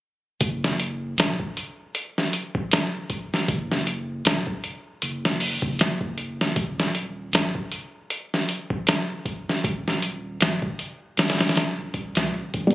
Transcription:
0.41 sub bass F#1, kick, closed hi-hat
0.64 snare
0.80 closed hi-hat
1.17 sub bass B1, snare, closed hi-hat
1.40 kick
1.57 closed hi-hat
1.95 closed hi-hat
2.18 snare
2.33 closed hi-hat
2.55 kick
2.71 snare, closed hi-hat
3.10 kick, closed hi-hat
3.34 snare
3.48 sub bass F#1, kick, closed hi-hat
3.72 snare
3.87 closed hi-hat
4.25 sub bass B1, snare, closed hi-hat
4.47 kick
4.64 closed hi-hat
5.02 sub bass F#1, closed hi-hat
5.25 snare
5.40 open hi-hat
5.62 sub bass F#1, kick
5.79 snare, closed hi-hat
6.01 kick
6.18 closed hi-hat
6.41 snare
6.56 sub bass D#1, kick, closed hi-hat
6.80 snare
6.95 closed hi-hat
7.32 sub bass G#1, snare, closed hi-hat
7.55 kick
7.72 closed hi-hat
8.10 closed hi-hat
8.34 snare
8.49 closed hi-hat
8.70 kick
8.87 snare, closed hi-hat
9.26 kick, closed hi-hat
9.49 snare
9.64 sub bass D#1, kick, closed hi-hat
9.88 snare
10.02 closed hi-hat
10.40 sub bass G#1, snare, closed hi-hat
10.62 kick
10.79 closed hi-hat
11.17 sub bass D#1, snare, closed hi-hat
11.28 snare, closed hi-hat
11.39 snare, closed hi-hat
11.48 snare, closed hi-hat
11.56 snare, closed hi-hat
11.78 sub bass D#1
11.94 kick, closed hi-hat
12.15 sub bass C#2, snare, closed hi-hat
12.32 sub bass D#1
12.54 sub bass A#1, kick, closed hi-hat
12.67 sub bass G1, felt piano G3 B3, kick, closed hi-hat
12.71 felt piano D4

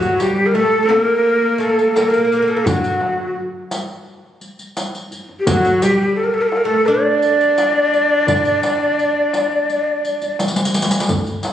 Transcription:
Already playing: double bass D2, oud F#3
0.00 cello F#3, ney F#4, riq
0.19 oud G3, cello G3, ney G4, riq, tombak tek
0.46 ney A#4
0.54 cello A3, oud A3, ney A4
0.83 oud A3, cello C4
0.89 oud A#3, cello A#3, ney A#4, tombak tek
1.58 oud A3, ney A4, riq
1.79 riq
1.94 cello A#3, oud A#3, ney A#4, riq, tombak tek
2.01 ney A4
2.08 oud A#3, cello A#3, ney A#4
2.14 riq
2.18 oud A#3
2.25 oud A#3
2.31 oud A#3, riq, tombak ka
2.42 oud A#3
2.48 oud A#3, ney A4, tombak ka
2.57 oud A#3
2.66 double bass D3, cello F#3, oud F#3, ney F#4, riq, tombak dum
2.84 riq
3.01 tombak tek
3.71 riq, tombak tek
4.41 riq
4.59 riq
4.77 riq, tombak tek
4.95 riq
5.11 riq, tombak ka
5.29 tombak ka
5.40 ney G4
5.46 double bass D2, cello F#3, oud F#3, ney F#4, riq, tombak dum
5.65 riq
5.81 cello G3, oud G3, ney G4, riq, tombak tek
6.15 ney A4
6.24 ney A#4
6.34 ney A4
6.42 ney A#4
6.48 ney A4, tombak tek
6.56 ney A#4
6.65 oud A3, cello A3, ney A4
6.87 oud D4, cello D4, ney D5
7.22 riq
7.41 riq
7.58 riq, tombak tek
7.94 riq, tombak ka
8.10 tombak ka
8.28 double bass D3, riq, tombak dum
8.45 riq
8.63 riq, tombak tek
8.99 riq
9.33 riq, tombak tek
9.70 riq
10.05 riq
10.22 riq, tombak ka
10.39 riq, tombak tek
10.48 riq
10.56 riq, tombak ka
10.65 riq
10.74 riq
10.82 riq
10.91 riq
11.00 riq
11.09 double bass D2, riq, tombak dum
11.27 riq, tombak ka
11.43 riq, tombak tek

